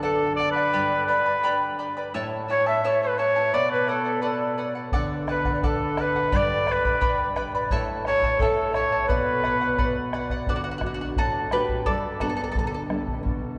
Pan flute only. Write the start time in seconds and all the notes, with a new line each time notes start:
0.03 A4
0.37 D5
0.55 D5
1.08 D5
2.51 C#5
2.68 E5
2.83 C#5
3.02 B4
3.20 C#5
3.53 D5
3.73 B4
3.90 A4
4.23 D5
5.29 B4
5.54 D5
5.63 A4
6.01 B4
6.35 D5
6.71 B4
8.07 C#5
8.39 A4
8.72 C#5
9.06 B4